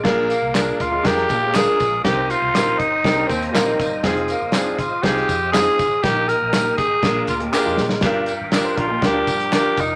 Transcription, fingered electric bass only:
\new Staff \with { instrumentName = "Fingered electric bass" } { \clef bass \time 4/4 \key bes \mixolydian \tempo 4 = 120 bes,,8. c,8. d,8 f,8 bes,4 bes,,8 | c,8. c,16 bes,,8 g,,8 c,8 ees,8 bes,,8 g,,8 | f,,8. g,,8. aes,,8 c,8 f,4 aes,,8 | bes,,8. bes,,8. aes,,8 bes,,8 d,8 r16 f,16 bes,8 |
g,,8. aes,,8. bes,,8 d,8 g,4 f,,8 | }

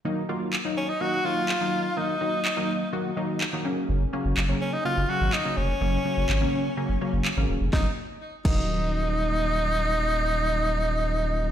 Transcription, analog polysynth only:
\new Staff \with { instrumentName = "Analog polysynth" } { \clef bass \time 4/4 \key ees \minor \tempo 4 = 125 <ees ges bes ees'>8 <ees ges bes f'>8 r16 <ees ges bes ees'>8 r16 <ees ges bes ees'>8 <ees ges bes ees'>8 r16 <ees ges bes ees'>8 r16 | <ees ges bes ees'>8 <ees ges bes ees'>8 r16 <ees ges bes ees'>8 r16 <ees ges bes ges'>8 <ees ges bes ees'>8 r16 <ees ges bes ees'>16 <des ges bes des'>8~ | <des ges bes des'>16 r16 <des ges bes des'>8 r16 <des ges bes des'>8 r16 <des ges bes des'>8 <des ges bes des'>8 r16 <des ges bes des'>8 r16 | <des ges bes des'>8 <des ges bes des'>8 r16 <des ges bes des'>8 r16 <des ges bes des'>8 <des ges bes des'>8 r16 <des ges bes des'>8 r16 |
<ees ges bes ees'>16 r4 r16 <ees ges bes ees'>2~ <ees ges bes ees'>8~ | <ees ges bes ees'>1 | }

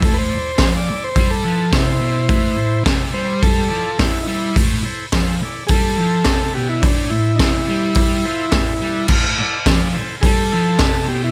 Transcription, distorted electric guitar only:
\new Staff \with { instrumentName = "Distorted electric guitar" } { \clef bass \time 4/4 \key a \minor \tempo 4 = 106 a,8 r8 f8 r8 g8 f8 c8 b,8 | a,8 a,8 c8 g4 f8 a,8 g8 | a,8 r8 f8 r8 g8 f8 c8 b,8 | a,8 a,8 c8 g4 f8 a,8 g8 |
a,8 r8 f8 r8 g8 f8 c8 b,8 | }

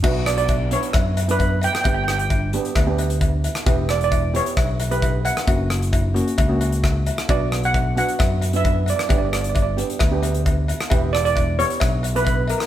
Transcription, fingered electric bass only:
\new Staff \with { instrumentName = "Fingered electric bass" } { \clef bass \time 4/4 \key b \minor \tempo 4 = 132 b,,2 fis,2 | g,,2 d,2 | e,,2 b,,2 | fis,,2 cis,2 |
b,,2 fis,2 | g,,2 d,2 | e,,2 b,,2 | }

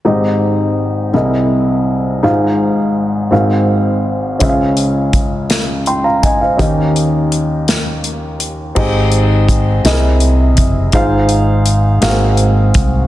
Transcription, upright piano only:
<<
  \new Staff \with { instrumentName = "Upright piano" } { \time 6/8 \key aes \major \tempo 4. = 55 << { r2. | r2. | r2 <g'' c'''>16 <f'' bes''>16 <ees'' aes''>16 <c'' f''>16~ | <c'' f''>16 r2 r8. |
r2. | r2. | } \\ { <c' ees' g' aes' ees''>4. <c' e' gis' bes' dis''>4. | <ees' f' g' aes' c'' f''>4. <c' ges' aes' bes' f''>4. | <des' f' aes' c'' fes'' f''>2. | <des' ees' g' bes' ees''>2. |
<c' ees' g' aes' ees''>4 r8 <c' e' gis' bes' dis''>4 r8 | <ees' f' aes' c'' f''>4 r8 <bes c' ges' aes' bes' f''>4 r8 | } >> }
  \new Staff \with { instrumentName = "Upright piano" } { \clef bass \time 6/8 \key aes \major <aes,, aes,>4. <c, c>4. | <aes,, aes,>4. <aes,, aes,>4. | <des, des>2. | <ees, ees>2. |
aes,4. c4. | aes,4. aes,4. | }
>>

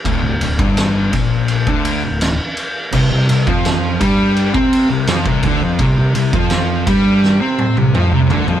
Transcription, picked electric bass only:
\new Staff \with { instrumentName = "Picked electric bass" } { \clef bass \time 4/4 \key c \mixolydian \tempo 4 = 84 d,,16 d,,16 d,,16 g,,8. bes,,8. d,8 d,,8 r8. | c,16 c,16 c,16 f,8. g,8. c8 c,16 f,16 c,16 d,16 f,16 | c,16 c,16 c,16 f,8. g,8. c8 c,16 f,16 c,16 d,16 f,16 | }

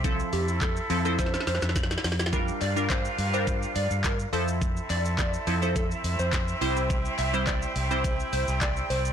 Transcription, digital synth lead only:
\new Staff \with { instrumentName = "Digital synth lead" } { \time 4/4 \key f \major \tempo 4 = 105 r8 g'16 r16 a'16 r8 a'16 c''8 c''16 r4 r16 | r8 d''16 r16 c''16 r8 c''8 r16 d''16 r16 bes'16 r16 c''16 r16 | r8 d''16 r16 d''16 r8 c''16 a'16 r8 c''8 r8. | r8 e''16 r16 d''16 r8 c''8 r16 c''16 r16 d''16 r16 c''16 r16 | }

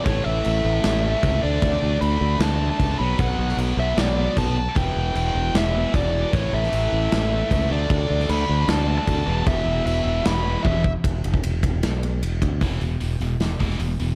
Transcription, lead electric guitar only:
\new Staff \with { instrumentName = "Lead electric guitar" } { \time 4/4 \key d \major \tempo 4 = 153 cis''8 e''2. d''8~ | d''4 b''4 a''8. a''8. b''8 | fis''4 r8 e''8 d''4 a''4 | g''4 g''4 e''4 d''4 |
cis''8 e''2. d''8~ | d''4 b''4 a''8. a''4~ a''16 | e''4 e''4 b''4 e''8. r16 | r1 |
r1 | }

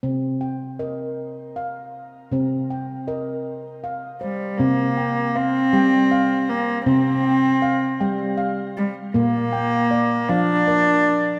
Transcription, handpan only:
<<
  \new Staff \with { instrumentName = "Handpan" } { \time 6/8 \key c \minor \tempo 4. = 53 << { r8 g''8 ees''4. r8 | r8 g''8 ees''4. c''8~ | c''8 g''4 g''4. | r8 g''4 g''4. |
r8 g''4 f''8 bes'4 | } \\ { c'4 bes'4 f''4 | c'4 bes'4 f''4 | c'4 f''4 f''4 | c'4 f''4 f''4 |
bes4 d''4 d''4 | } >> }
  \new Staff \with { instrumentName = "Handpan" } { \clef bass \time 6/8 \key c \minor c2. | c2. | c4. g4. | c4. g4. |
bes,4. f4. | }
>>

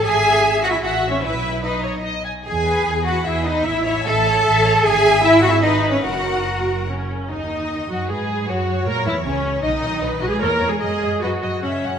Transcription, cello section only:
\new Staff \with { instrumentName = "Cello section" } { \time 3/4 \key e \major \tempo 4 = 150 gis'4~ \tuplet 3/2 { gis'8. fis'16 e'8 fis'4 cis'8 } | e'4 dis'4 r4 | gis'4. fis'8 e'8 dis'8 | e'8 e'8 a'2 |
\key b \major gis'4 \tuplet 3/2 { e'8. fis'16 e'8 dis'4 cis'8 } | fis'2 cis4 | dis4. fis8 gis4 | fis4 ais8 e8 cis4 |
dis4~ \tuplet 3/2 { dis8. fis16 gis8 ais4 gis8 } | gis4 fis4 cis4 | }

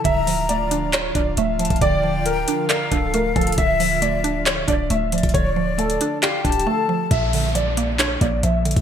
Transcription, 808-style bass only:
\new Staff \with { instrumentName = "808-style bass" } { \clef bass \time 4/4 \key d \minor \tempo 4 = 136 d,,2~ d,,8 d,,8 d,,8. d,,16 | d,,4. r4 d,,4 d,,8 | d,,2~ d,,8 d,,8 d,,8. d,,16 | d,,4. r4 d,,8 r4 |
bes,,2~ bes,,8 bes,,8 bes,,8. bes,,16 | }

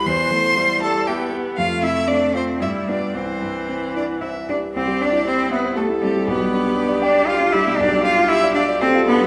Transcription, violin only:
\new Staff \with { instrumentName = "Violin" } { \time 3/4 \key c \major \tempo 4 = 118 c'''4. a''8 g''8 r8 | f''8 e''8 d''8 c''8 e''8 d''8 | c''4. d''8 e''8 d''8 | c''8 d''8 c''8 b'8 a'8 g'8 |
b'4. d''8 f''8 e''8 | d''8 f''8 e''8 d''8 c''8 b'8 | }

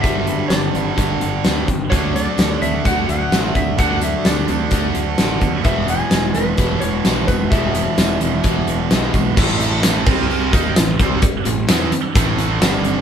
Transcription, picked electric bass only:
\new Staff \with { instrumentName = "Picked electric bass" } { \clef bass \time 4/4 \key d \lydian \tempo 4 = 129 g,,4 g,,8 g,,8 g,,8 g,,8 d,8 g,,8 | d,4 d,8 d,8 d,8 d,8 a,,8 d,8 | d,4 d,8 d,8 d,8 d,8 a,,8 dis,8 | e,,4 e,,8 e,,8 e,,8 e,,8 b,,8 e,,8 |
e,,4 e,,8 e,,8 e,,8 e,,8 b,,8 b,,8 | a,,4. c,4 dis,8 a,,8 c,8 | r8 a,,8 e,8 r8 a,,4 g,,4 | }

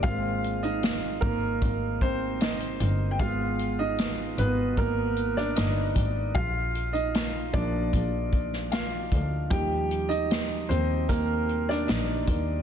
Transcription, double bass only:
\new Staff \with { instrumentName = "Double bass" } { \clef bass \time 4/4 \key aes \lydian \tempo 4 = 76 aes,,4. aes,,8 aes,,4. g,,8 | aes,,4. aes,,8 aes,,4 g,,8 aes,,8 | bes,,4. bes,,8 bes,,4. d,8 | ees,4. ees,8 ees,4 bes,,8 ees,8 | }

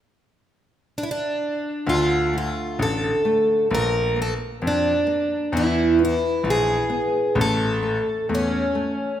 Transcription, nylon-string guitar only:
\new Staff \with { instrumentName = "Nylon-string guitar" } { \time 2/4 \key d \minor \tempo 4 = 65 r2 | d8 a8 d'8 a8 | bes8 bes8 bes8 bes8 | e8 b8 e8 b8 |
a8 a8 a8 a8 | }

